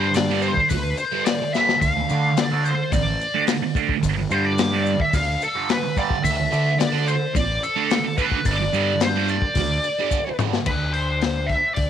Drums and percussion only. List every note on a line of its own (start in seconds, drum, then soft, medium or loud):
0.14 snare loud
0.14 open hi-hat medium
0.14 maracas loud
0.42 maracas medium
0.57 kick medium
0.70 kick loud
0.70 open hi-hat medium
0.70 maracas loud
0.98 maracas medium
1.26 snare loud
1.26 open hi-hat medium
1.26 maracas loud
1.54 snare medium
1.54 maracas medium
1.69 snare medium
1.81 kick loud
1.81 open hi-hat medium
1.81 maracas loud
2.09 maracas medium
2.37 snare loud
2.37 open hi-hat medium
2.37 maracas medium
2.65 maracas medium
2.92 kick loud
2.92 open hi-hat medium
2.92 maracas loud
3.21 maracas medium
3.47 snare loud
3.47 open hi-hat medium
3.47 maracas loud
3.75 kick medium
3.75 maracas medium
3.89 kick medium
4.03 kick medium
4.03 open hi-hat medium
4.03 maracas loud
4.31 maracas medium
4.58 snare loud
4.58 open hi-hat medium
4.58 maracas loud
4.86 maracas medium
5.00 kick medium
5.13 kick loud
5.13 open hi-hat medium
5.13 maracas medium
5.42 maracas medium
5.69 snare loud
5.69 open hi-hat medium
5.69 maracas medium
5.97 kick medium
5.97 maracas medium
6.10 kick medium
6.24 kick medium
6.24 open hi-hat medium
6.24 maracas loud
6.53 maracas medium
6.80 snare loud
6.80 open hi-hat medium
6.80 maracas medium
7.08 maracas medium
7.35 kick loud
7.35 open hi-hat medium
7.35 maracas loud
7.63 maracas medium
7.90 snare loud
7.90 open hi-hat medium
7.90 maracas loud
8.18 kick medium
8.18 maracas medium
8.32 kick medium
8.45 kick medium
8.45 open hi-hat medium
8.45 maracas loud
8.73 maracas medium
9.00 snare loud
9.00 open hi-hat medium
9.00 maracas loud
9.28 maracas medium
9.42 kick medium
9.55 kick loud
9.55 open hi-hat medium
9.55 maracas medium
9.84 maracas medium
10.11 kick medium
10.11 maracas medium
10.39 mid tom medium
10.39 maracas medium
10.53 snare medium
10.66 kick loud
10.66 crash medium
10.94 open hi-hat soft
11.21 snare loud
11.21 open hi-hat medium
11.49 kick medium
11.49 open hi-hat soft
11.76 kick loud
11.76 open hi-hat medium